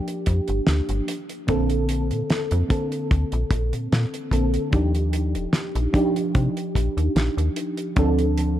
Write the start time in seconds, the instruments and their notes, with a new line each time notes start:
Already playing: fm electric piano F3 A#3 D4 G4
0.08 closed hi-hat
0.26 fm bass F2, kick, closed hi-hat
0.48 fm bass G1, closed hi-hat
0.67 fm bass D2, snare, closed hi-hat
0.89 fm bass G1, closed hi-hat
1.08 closed hi-hat
1.29 closed hi-hat
1.47 fm bass A#1, fm electric piano D3 A#3 C4 A4, kick, closed hi-hat
1.70 closed hi-hat
1.89 closed hi-hat
2.11 fm bass A#2, closed hi-hat
2.30 snare, closed hi-hat
2.51 fm bass F2, closed hi-hat
2.68 fm electric piano D3 A#3 C4 A4, kick, closed hi-hat
2.92 closed hi-hat
3.11 fm bass D2, kick, closed hi-hat
3.32 fm bass A#1, closed hi-hat
3.51 fm bass A#1, kick, closed hi-hat
3.73 fm bass A#2, closed hi-hat
3.92 fm bass A#2, snare, closed hi-hat
4.14 closed hi-hat
4.31 fm bass A#1, fm electric piano D3 A#3 C4 A4, kick, closed hi-hat
4.54 closed hi-hat
4.71 fm bass D#2, fm electric piano F3 D4 D#4 G4, kick, closed hi-hat
4.95 closed hi-hat
5.13 closed hi-hat
5.35 fm bass D#1, closed hi-hat
5.53 snare, closed hi-hat
5.75 fm bass A#1, closed hi-hat
5.93 fm electric piano F3 D4 D#4 G4, kick, closed hi-hat
6.16 closed hi-hat
6.35 fm bass C3, kick, closed hi-hat
6.57 closed hi-hat
6.75 fm bass A#1, kick, closed hi-hat
6.97 fm bass D#2, closed hi-hat
7.16 fm bass A#1, snare, closed hi-hat
7.37 fm bass D#2, closed hi-hat
7.56 closed hi-hat
7.77 closed hi-hat
7.96 fm bass D2, fm electric piano F3 C4 D4 A4, kick, closed hi-hat
8.19 closed hi-hat
8.38 closed hi-hat